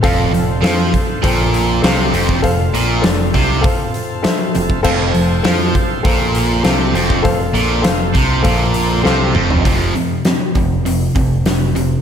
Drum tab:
CC |----------------|----------------|x---------------|----------------|
HH |o-o-o-o-o-o-o-o-|o-o-o-o-o-o-o-o-|--o-o-o-o-o-o-o-|o-o-o-o-o-o-----|
SD |----o-------o---|----o-------o---|----o-------o---|----o-------o---|
T2 |----------------|----------------|----------------|--------------o-|
FT |----------------|----------------|----------------|---------------o|
BD |o-----o-o------o|o-----o-o------o|o-----o-o------o|o-----o-o-------|

CC |----------------|
HH |o-o-o-o-o-o-o-o-|
SD |----o-------o---|
T2 |----------------|
FT |----------------|
BD |o-----o---o-----|